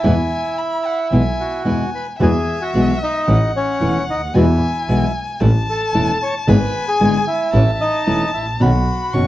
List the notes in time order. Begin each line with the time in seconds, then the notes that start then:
Already playing: E4 E5
0.03 E2 B2 E3 G#3 B3 E4 G#5
0.58 B5
0.85 F#5
1.11 B1 B2 E3 G#3 B3 E4 G#5
1.40 F#4 F#5
1.65 E2 B2 E3 G#3 B3 E4 G#5
1.95 B4 B5
2.20 E2 B2 E3 G#3 B3 F#4 G#4 E5 G#5
2.62 F#4 F#5
2.74 B1 B2 E3 G#3 B3 F#4
3.03 D#4 D#5
3.28 A1 E3 A3 C#4 E4 F#5
3.56 C#4 C#5
3.80 E1 E3 A3 C#4 E4
4.08 D2 D#4 D#5
4.34 E2 B2 E3 G#3 B3 E4 F#4 E5 G#5
4.88 B1 B2 E3 G#3 B3 F#4
5.40 A1 E3 A3 C#4 E4 A5
5.70 A4 A5
5.94 E1 E3 A3 C#4 E4
6.23 C#5 C#6
6.47 G#1 D3 G#3 B3 E4 G#4 B4 G#5 B5
6.88 G#4 G#5
7.00 G#1 D3 G#3 B3 E4 G#4
7.28 E4 E5
7.53 A1 E3 A3 C#4 E4 A5
7.74 E5
7.81 D#4 D#5
8.07 E1 E3 A3 C#4 E4
8.34 A1 E4 E5
8.60 B1 B2 D#3 C#4 F#4 F#5 B5
9.13 F#1 B2 D#3 C#4 F#4 C#6